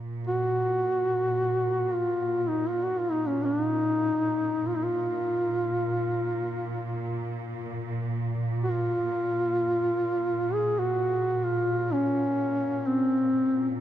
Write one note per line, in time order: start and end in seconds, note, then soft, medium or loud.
0.00 13.80 A#2 soft
0.27 1.95 F#4 medium
1.94 2.50 F4 medium
2.48 2.69 D#4 medium
2.68 2.85 F4 medium
2.84 3.00 F#4 medium
2.98 3.13 F4 medium
3.11 3.28 D#4 medium
3.27 3.46 C#4 medium
3.45 3.64 D4 medium
3.64 4.69 D#4 medium
4.67 4.78 F4 medium
4.76 4.86 D#4 medium
4.84 7.42 F4 medium
8.63 8.73 F#4 medium
8.72 10.55 F4 medium
10.53 10.80 G#4 medium
10.79 11.46 F#4 medium
11.44 11.94 F4 medium
11.93 12.88 C#4 medium
12.87 13.74 C4 medium